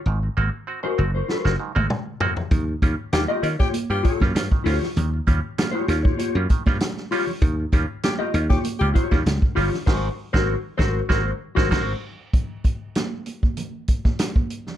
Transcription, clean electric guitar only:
\new Staff \with { instrumentName = "Clean electric guitar" } { \time 4/4 \key ees \mixolydian \tempo 4 = 98 r4 r16 <ges' bes' c''>16 r16 <ges' bes' c''>16 <ges' bes' c''>16 r4. r16 | r4 r16 <f' g' ees''>16 r16 <f' g' des''>16 r8 <f' g' des''>16 r8. <f' g' des''>16 r16 | r4 r16 <f' g' des''>16 r16 <f' g' des''>16 <f' g' des''>16 r4 r16 <f' g' des''>16 r16 | r4 r16 <f' g' ees''>16 r16 <f' g' des''>16 r8 <f' g' des''>16 r8. <f' g' des''>16 r16 |
<ges' bes' c''>8 r16 <ges' bes' c''>8 r16 <ges' bes' c''>8 <ges' bes' c''>8 r16 <ges' bes' c''>16 <ges' bes' c''>8 r8 | r1 | }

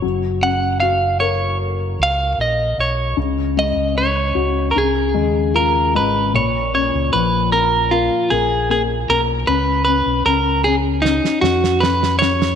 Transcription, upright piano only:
\new Staff \with { instrumentName = "Upright piano" } { \time 4/4 \key ais \phrygian \tempo 4 = 76 fis8 cis'8 fis'8 ais'2 r8 | cis8 gis8 cis'8 fis'8 cis8 gis8 eis'8 gis8 | ais,8 cis'8 eis8 ais8 ais8 ais8 ais8 ais8 | cis'8 cis'8 cis'8 cis'8 cis'8 cis'8 cis'8 cis'8 | }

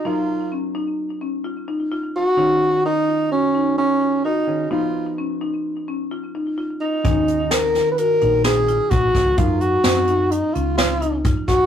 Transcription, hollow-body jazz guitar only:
\new Staff \with { instrumentName = "Hollow-body jazz guitar" } { \time 5/4 \key dis \minor \tempo 4 = 129 <fis eis' ais'>1~ <fis eis' ais'>4 | <dis cis' fis'>1~ <dis cis' fis'>8 <dis cis' gis'>8 | <eis b dis'>1~ <eis b dis'>4 | <dis cis' fis'>1~ <dis cis' fis'>4 |
<fis ais' eis''>1~ <fis ais' eis''>4 | }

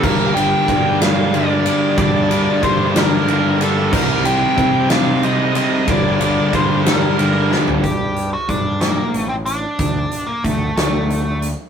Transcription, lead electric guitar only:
\new Staff \with { instrumentName = "Lead electric guitar" } { \time 6/8 \key g \minor \tempo 4. = 61 bes'8 g''4 f''8 d''4 | d''4 c''8 bes'4 a'8 | bes'8 g''4 f''8 ees''8 ees''8 | d''4 c''8 bes'4 r8 |
\key bes \major g'8. fis'16 d'8 bes8. c'16 d'8~ | d'8. bes16 a8 a4 r8 | }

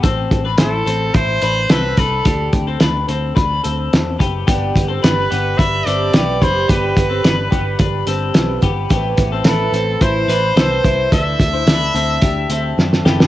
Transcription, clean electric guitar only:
\new Staff \with { instrumentName = "Clean electric guitar" } { \time 4/4 \key g \major \tempo 4 = 108 <c' a'>8. <d' b'>16 <e' c''>8 <c' a'>8 <e' c''>8 <d' b'>8 <c' a'>8 <d' b'>8 | <d' g'>8. <c' a'>16 <d' b'>8 <c' a'>8 <d' b'>8 <c' a'>4 <b g'>8 | <b g'>8. <c' a'>16 <d' b'>8 <b g'>8 <d' b'>8 <c' a'>8 <b g'>8 <d' b'>8 | <b g'>8. <c' a'>16 <d' b'>8 <b g'>8 <d' b'>8 <c' a'>4 <b g'>8 |
<b g'>8. <c' a'>16 <e' b'>8 <c' a'>8 <e' c''>8 <d' b'>8 <c' a'>8 <e' c''>8 | <d' a'>8. <e' c''>16 <d' b'>8 <c' a'>8 <d' g'>8 <c' a'>4 <b g'>8 | }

